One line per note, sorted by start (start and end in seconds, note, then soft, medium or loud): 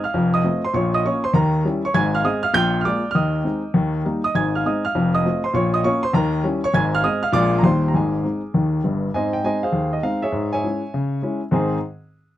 0.04 0.32 F5 medium
0.04 0.34 F6 medium
0.14 0.40 F1 medium
0.14 0.40 F2 medium
0.34 0.62 D#5 medium
0.34 0.64 D#6 medium
0.44 0.61 A3 soft
0.44 0.61 C4 soft
0.44 0.61 F4 soft
0.65 0.75 C5 medium
0.65 0.75 C6 medium
0.73 1.00 A#1 medium
0.73 0.99 A#2 medium
0.73 0.93 C#5 medium
0.73 0.94 C#6 medium
0.94 1.04 D#5 medium
0.94 1.05 D#6 medium
1.05 1.21 A#3 soft
1.05 1.22 C#4 soft
1.05 1.22 F4 soft
1.05 1.24 C#5 medium
1.05 1.24 C#6 medium
1.24 1.34 C5 medium
1.24 1.34 C6 medium
1.34 1.60 D#2 medium
1.34 1.59 D#3 medium
1.34 1.63 A#4 medium
1.34 1.64 A#5 medium
1.65 1.81 G3 medium
1.65 1.81 C#4 soft
1.65 1.82 E4 medium
1.85 1.95 C#5 medium
1.85 1.95 C#6 medium
1.94 2.20 G#1 medium
1.94 2.20 G#2 medium
1.94 2.13 G#5 medium
1.94 2.14 G#6 loud
2.15 2.25 F5 medium
2.15 2.25 F6 medium
2.24 2.40 G#3 soft
2.24 2.41 C4 soft
2.24 2.41 G#4 medium
2.24 2.43 D#5 medium
2.24 2.44 D#6 medium
2.43 2.54 F5 medium
2.43 2.54 F6 loud
2.53 2.79 A#1 medium
2.53 2.79 A#2 medium
2.53 2.78 G5 medium
2.53 2.79 G6 loud
2.81 3.01 G#3 soft
2.81 2.85 F6 medium
2.85 3.01 A#3 soft
2.85 3.02 F4 medium
2.85 3.09 D5 medium
2.85 3.09 D6 medium
3.11 3.40 D#2 medium
3.11 3.15 F6 medium
3.15 3.40 D#3 medium
3.15 4.01 D#5 soft
3.15 4.05 D#6 medium
3.44 3.61 G#3 soft
3.44 3.61 C4 soft
3.44 3.61 D#4 soft
3.74 4.00 D#2 medium
3.74 4.00 D#3 medium
4.05 4.21 G3 soft
4.05 4.21 A#3 soft
4.05 4.22 D#4 medium
4.24 4.35 D#5 medium
4.24 4.35 D#6 medium
4.35 4.60 G#1 medium
4.35 4.60 G#2 medium
4.35 4.53 G#5 medium
4.35 4.54 G#6 medium
4.55 4.65 F5 medium
4.55 4.65 F6 medium
4.66 4.82 G#3 soft
4.66 4.82 C4 soft
4.66 4.82 D#4 soft
4.66 4.84 D#5 medium
4.66 4.84 D#6 medium
4.85 5.12 F5 medium
4.85 5.14 F6 medium
4.95 5.20 F1 medium
4.95 5.20 F2 medium
5.15 5.42 D#5 medium
5.15 5.44 D#6 medium
5.25 5.41 A3 soft
5.25 5.41 C4 soft
5.25 5.42 F4 soft
5.44 5.54 C5 medium
5.44 5.54 C6 medium
5.53 5.79 A#1 medium
5.53 5.79 A#2 medium
5.53 5.73 C#5 medium
5.53 5.74 C#6 medium
5.74 5.84 D#5 medium
5.74 5.84 D#6 medium
5.84 6.00 A#3 soft
5.84 6.01 C#4 soft
5.84 6.01 F4 medium
5.84 6.03 C#5 medium
5.84 6.03 C#6 medium
6.03 6.14 C5 medium
6.03 6.14 C6 loud
6.13 6.39 D#2 medium
6.13 6.39 D#3 medium
6.13 6.43 A#4 medium
6.13 6.44 A#5 medium
6.43 6.60 G3 medium
6.43 6.60 C#4 medium
6.43 6.61 E4 medium
6.64 6.74 C#5 medium
6.64 6.74 C#6 loud
6.74 6.99 G#1 medium
6.74 6.99 G#2 medium
6.74 6.92 G#5 medium
6.74 6.93 G#6 loud
6.95 7.04 F5 medium
6.95 7.05 F6 loud
7.04 7.20 G#3 soft
7.04 7.20 C4 soft
7.04 7.21 G#4 medium
7.04 7.22 D#5 medium
7.04 7.23 D#6 medium
7.23 7.33 F5 medium
7.23 7.34 F6 medium
7.32 7.58 A#1 medium
7.32 7.58 A#2 medium
7.32 7.50 G#3 medium
7.32 7.50 A#3 medium
7.32 7.50 F4 medium
7.32 7.57 D5 medium
7.32 7.58 D6 loud
7.58 7.64 A#5 medium
7.63 7.89 D#2 medium
7.63 7.89 D#3 medium
7.63 7.80 G3 soft
7.63 7.80 A#3 soft
7.63 7.80 D#4 soft
7.63 7.87 C5 medium
7.63 7.88 C6 medium
7.88 7.94 A#5 medium
7.94 8.19 G#1 soft
7.94 8.19 G#2 medium
7.94 9.00 G#4 soft
7.94 9.03 G#5 medium
8.23 8.40 G#3 soft
8.23 8.40 C4 soft
8.23 8.41 D#4 soft
8.54 8.80 D#2 medium
8.54 8.79 D#3 medium
8.84 9.08 G1 medium
8.84 9.08 G2 medium
9.14 9.39 G#2 medium
9.14 9.32 C4 soft
9.14 9.33 C5 medium
9.14 9.33 D#5 medium
9.14 9.33 G#5 medium
9.33 9.44 G5 medium
9.44 9.60 G#3 soft
9.44 9.61 C4 soft
9.44 9.61 D#4 soft
9.44 9.63 C5 medium
9.44 9.63 D#5 medium
9.44 9.63 G#5 medium
9.63 9.92 G#4 medium
9.63 9.91 C5 medium
9.63 9.93 F5 medium
9.72 9.98 D#2 medium
9.93 10.04 D#5 medium
10.03 10.20 G#3 soft
10.03 10.20 C4 soft
10.03 10.20 D#4 soft
10.03 10.23 F5 medium
10.22 10.51 G#4 medium
10.22 10.51 C#5 medium
10.22 10.53 E5 medium
10.32 10.58 G#2 medium
10.53 11.39 C#5 medium
10.53 11.40 E5 medium
10.53 11.43 G#5 medium
10.64 10.80 G#3 soft
10.64 10.81 C#4 soft
10.64 10.80 E4 soft
10.94 11.19 C#3 medium
11.22 11.39 G#3 soft
11.22 11.40 C#4 soft
11.22 11.40 E4 soft
11.51 11.72 G#2 medium
11.51 11.73 D#3 medium
11.51 11.73 C4 medium
11.51 11.73 D#4 medium
11.51 11.73 G#4 medium
11.51 11.73 C5 medium
11.51 11.74 G#5 soft